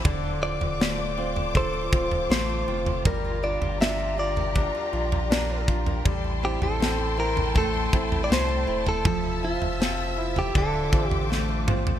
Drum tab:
SD |----o-------o---|----o-------o---|----o-------o---|----o-------o---|
T2 |----------------|----------------|----------------|--------------o-|
FT |o--o---oo--o---o|o--o---oo--o---o|o--o---oo--o---o|o--o---oo--o---o|
BD |o-------o-o-----|o-------o-----o-|o-------o-o-----|o-------o-o-----|